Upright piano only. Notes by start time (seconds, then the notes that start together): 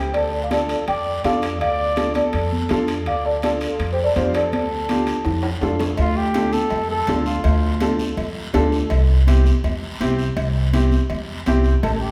0.50 D4 F4 A4
1.25 D4 F4 A4
1.96 D4 F4 A4
2.70 D4 F4 A4
3.43 D4 F4 A4
4.16 D4 F4 G4
4.89 D4 F4 G4
5.63 D4 F4 A4
6.34 D4 F4 A4
7.09 D4 F4 A4
7.81 D4 F4 A4
8.53 D4 F4 A4
9.27 C4 E4 G4
10.00 C4 E4 G4
10.73 C4 E4 G4
11.47 C4 E4 G4